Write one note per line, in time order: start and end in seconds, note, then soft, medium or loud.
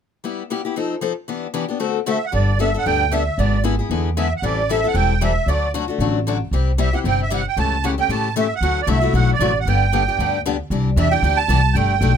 0.24 0.42 G3 soft
0.24 0.42 B3 medium
0.24 0.42 E4 medium
0.24 0.42 G4 medium
0.50 0.60 G3 medium
0.50 0.60 B3 medium
0.50 0.60 E4 medium
0.50 0.61 G4 medium
0.65 0.76 B3 soft
0.65 0.76 E4 soft
0.65 0.76 G4 soft
0.76 0.94 F3 medium
0.76 0.94 C4 medium
0.76 0.95 D#4 medium
0.76 0.95 A4 medium
1.01 1.12 F3 medium
1.01 1.12 C4 medium
1.01 1.12 D#4 medium
1.01 1.12 A4 medium
1.28 1.46 E3 medium
1.28 1.47 B3 medium
1.28 1.47 D4 medium
1.28 1.47 G4 medium
1.54 1.64 E3 medium
1.54 1.64 B3 medium
1.54 1.64 D4 medium
1.54 1.65 G4 medium
1.69 1.79 B3 soft
1.69 1.80 D4 soft
1.69 1.80 G4 soft
1.79 1.98 D3 medium
1.79 1.98 A3 medium
1.79 1.98 C4 medium
1.79 1.99 F#4 medium
1.79 1.99 A4 medium
2.06 2.17 D3 medium
2.06 2.17 A3 medium
2.06 2.17 C4 medium
2.06 2.17 F#4 medium
2.06 2.17 A4 medium
2.06 2.25 E5 medium
2.25 2.34 F#5 medium
2.32 2.75 G1 medium
2.32 2.51 G3 medium
2.32 2.51 B3 medium
2.32 2.51 D4 medium
2.32 2.51 A4 medium
2.32 2.58 D5 medium
2.59 2.69 G3 medium
2.59 2.70 B3 medium
2.59 2.70 D4 medium
2.59 2.70 A4 medium
2.59 2.76 E5 medium
2.74 2.85 B3 soft
2.74 2.85 D4 soft
2.74 2.85 A4 soft
2.74 2.85 F#5 medium
2.86 3.28 D2 medium
2.86 3.04 G3 medium
2.86 3.04 B3 medium
2.86 3.04 D4 medium
2.86 3.04 A4 medium
2.86 3.13 G5 medium
3.12 3.22 G3 medium
3.12 3.22 B3 medium
3.12 3.22 D4 medium
3.12 3.23 A4 medium
3.12 3.39 E5 medium
3.38 3.80 G#1 medium
3.38 3.56 D3 medium
3.38 3.56 G#3 medium
3.38 3.57 B3 medium
3.38 3.57 E4 medium
3.38 3.57 G#4 medium
3.38 3.63 D5 medium
3.64 3.74 D3 medium
3.64 3.74 G#3 medium
3.64 3.74 B3 medium
3.64 3.74 E4 medium
3.64 3.75 G#4 medium
3.79 3.90 B3 soft
3.79 3.90 E4 soft
3.79 3.90 G#4 soft
3.90 4.32 E2 medium
3.90 4.09 D3 medium
3.90 4.09 G#3 medium
3.90 4.09 B3 medium
3.90 4.09 E4 medium
3.90 4.09 G#4 medium
4.17 4.27 D3 medium
4.17 4.27 G#3 medium
4.17 4.27 B3 medium
4.17 4.27 E4 medium
4.17 4.27 G#4 medium
4.17 4.33 E5 medium
4.37 4.44 F#5 medium
4.42 4.84 A1 medium
4.42 4.61 E3 medium
4.42 4.61 G3 medium
4.42 4.61 C4 medium
4.42 4.61 E4 medium
4.42 4.61 A4 medium
4.42 4.70 D5 medium
4.69 4.79 E3 medium
4.69 4.80 G3 medium
4.69 4.80 C4 medium
4.69 4.80 E4 medium
4.69 4.80 A4 medium
4.69 4.87 E5 medium
4.84 4.94 C4 soft
4.84 4.94 E4 soft
4.84 4.95 A4 medium
4.84 4.95 F#5 medium
4.94 5.36 E1 medium
4.94 5.13 E3 medium
4.94 5.13 G3 medium
4.94 5.13 C4 medium
4.94 5.13 E4 medium
4.94 5.13 A4 medium
4.94 5.22 G5 medium
5.21 5.31 E3 medium
5.21 5.31 G3 medium
5.21 5.32 C4 medium
5.21 5.32 E4 medium
5.21 5.32 A4 medium
5.21 5.49 E5 medium
5.46 5.88 D2 medium
5.46 5.66 D3 medium
5.46 5.66 F#3 medium
5.46 5.66 A3 soft
5.46 5.66 D4 medium
5.46 5.66 F#4 medium
5.46 5.72 D5 medium
5.74 5.84 D3 medium
5.74 5.84 F#3 medium
5.74 5.84 A3 medium
5.74 5.84 D4 medium
5.74 5.84 F#4 medium
5.88 6.00 A3 soft
5.88 6.00 D4 soft
5.88 5.99 F#4 soft
5.98 6.41 A1 medium
5.98 6.18 D3 medium
5.98 6.18 F#3 medium
5.98 6.18 A3 medium
5.98 6.19 D4 medium
5.98 6.19 F#4 medium
6.27 6.36 D3 medium
6.27 6.37 F#3 medium
6.27 6.37 A3 medium
6.27 6.37 D4 medium
6.27 6.37 F#4 medium
6.51 6.93 C2 medium
6.51 6.70 C3 medium
6.51 6.71 G3 medium
6.51 6.71 C4 medium
6.51 6.71 E4 medium
6.51 6.71 G4 medium
6.78 6.88 C3 medium
6.78 6.88 G3 medium
6.78 6.89 C4 medium
6.78 6.89 E4 medium
6.78 6.89 G4 medium
6.78 6.94 E5 medium
6.93 7.04 C4 soft
6.93 7.04 E4 soft
6.93 7.04 G4 soft
6.93 6.99 F#5 medium
7.04 7.46 G1 medium
7.04 7.23 C3 medium
7.04 7.23 G3 medium
7.04 7.23 C4 medium
7.04 7.23 E4 medium
7.04 7.23 G4 medium
7.04 7.21 G5 medium
7.22 7.31 E5 medium
7.30 7.41 C3 medium
7.30 7.41 G3 medium
7.30 7.41 C4 medium
7.30 7.41 E4 medium
7.30 7.41 G4 medium
7.30 7.46 F#5 medium
7.48 7.58 G5 medium
7.57 7.98 C#2 medium
7.57 7.75 C#3 medium
7.57 7.75 E3 medium
7.57 7.75 A3 medium
7.57 7.75 C#4 medium
7.57 7.75 G4 medium
7.57 7.85 A5 medium
7.84 7.93 C#3 medium
7.84 7.94 E3 medium
7.84 7.94 A3 medium
7.84 7.94 C#4 medium
7.84 7.94 G4 medium
7.84 7.91 F#5 medium
7.98 8.09 A3 soft
7.98 8.09 C#4 soft
7.98 8.09 G4 soft
7.98 8.11 G5 medium
8.09 8.51 A2 medium
8.09 8.27 C#3 medium
8.09 8.28 E3 medium
8.09 8.28 A3 medium
8.09 8.28 C#4 medium
8.09 8.28 G4 medium
8.09 8.35 A5 medium
8.36 8.46 C#3 medium
8.36 8.46 E3 medium
8.36 8.46 A3 medium
8.36 8.46 C#4 medium
8.36 8.46 G4 loud
8.36 8.54 E5 medium
8.55 8.81 F#5 medium
8.61 8.82 D2 medium
8.61 8.80 D3 medium
8.61 8.80 F#3 medium
8.61 8.80 A3 medium
8.61 8.80 E4 medium
8.61 8.80 F#4 medium
8.82 8.89 D5 medium
8.87 9.09 C2 medium
8.87 8.97 D3 medium
8.87 8.98 F#3 medium
8.87 8.98 A3 medium
8.87 8.98 E4 medium
8.87 8.98 F#4 medium
8.87 9.13 E5 medium
9.02 9.14 A3 soft
9.02 9.13 E4 soft
9.02 9.13 F#4 medium
9.13 9.36 B1 medium
9.13 9.32 D3 medium
9.13 9.32 F#3 medium
9.13 9.32 A3 medium
9.13 9.32 E4 medium
9.13 9.33 F#4 medium
9.13 9.31 F#5 medium
9.33 9.59 D5 medium
9.39 9.62 A1 medium
9.39 9.50 D3 medium
9.39 9.50 F#3 medium
9.39 9.51 A3 medium
9.39 9.51 E4 medium
9.39 9.51 F#4 medium
9.60 9.67 F#5 medium
9.65 10.07 G1 medium
9.65 9.85 D3 medium
9.65 9.85 G3 medium
9.65 9.85 B3 medium
9.65 9.85 D4 medium
9.65 9.85 G4 medium
9.65 10.41 G5 medium
9.93 10.02 D3 medium
9.93 10.03 G3 medium
9.93 10.03 B3 medium
9.93 10.03 D4 medium
9.93 10.03 G4 medium
10.08 10.19 B3 soft
10.08 10.19 D4 soft
10.08 10.18 G4 medium
10.18 10.60 D2 medium
10.18 10.37 D3 medium
10.18 10.37 G3 medium
10.18 10.37 B3 medium
10.18 10.37 D4 medium
10.18 10.38 G4 medium
10.46 10.55 D3 medium
10.46 10.55 G3 medium
10.46 10.55 B3 medium
10.46 10.56 D4 medium
10.46 10.56 G4 medium
10.70 10.96 C2 medium
10.70 10.89 C3 medium
10.70 10.89 E3 medium
10.70 10.89 D4 medium
10.70 10.89 G4 medium
10.96 11.22 E2 medium
10.96 11.07 C3 medium
10.96 11.07 E3 medium
10.96 11.07 D4 medium
10.96 11.07 G4 medium
10.96 11.12 E5 medium
11.11 11.23 E3 soft
11.11 11.23 D4 soft
11.11 11.22 G4 medium
11.11 11.38 G5 medium
11.22 11.48 D2 medium
11.22 11.41 C3 medium
11.22 11.42 E3 medium
11.22 11.42 D4 medium
11.22 11.42 G4 medium
11.37 11.76 A5 loud
11.48 11.74 C2 loud
11.48 11.59 C3 medium
11.48 11.59 E3 medium
11.48 11.60 D4 medium
11.48 11.60 G4 loud
11.73 12.00 G1 medium
11.73 11.93 G3 medium
11.73 11.94 A3 medium
11.73 11.94 D4 medium
11.73 11.94 G4 medium
11.73 12.17 G5 medium
12.01 12.17 B1 medium
12.01 12.11 G3 medium
12.01 12.12 A3 medium
12.01 12.12 D4 medium
12.01 12.12 G4 medium